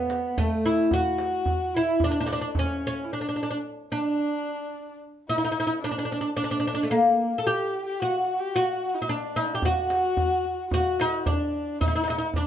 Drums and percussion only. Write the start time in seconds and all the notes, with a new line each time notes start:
0.10 tombak tek
0.38 tombak dum
0.50 tombak ka
0.91 tombak dum
1.18 tombak tek
1.33 tombak ka
1.46 tombak dum
1.74 tombak ka
2.00 tombak dum
2.28 tombak tek
2.55 tombak dum
2.70 tombak ka
9.62 tombak dum
9.90 tombak tek
10.04 tombak ka
10.17 tombak dum
10.45 tombak ka
10.71 tombak dum
11.00 tombak tek
11.26 tombak dum
11.40 tombak ka
11.54 tombak ka
11.81 tombak dum
11.95 tombak ka
12.08 tombak tek
12.22 tombak ka
12.34 tombak dum